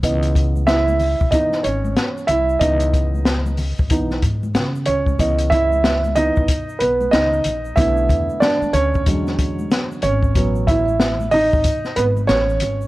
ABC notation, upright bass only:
X:1
M:4/4
L:1/16
Q:"Swing 16ths" 1/4=93
K:C#m
V:1 name="Upright bass" clef=bass
C,,6- C,, B,,, z2 G,,,2 z2 ^B,,,2 | C,,6- C,, B,,,3 G,,2 C,2 C,,2 | C,,6- C,, B,,, z2 B,,,2 C,,2 ^A,,,2 | B,,,2 E,, z3 =D,,2 E,,4 z2 G,,,2 |
A,,,6- A,,, G,,, z2 G,,,2 A,,,2 G,,,2 |]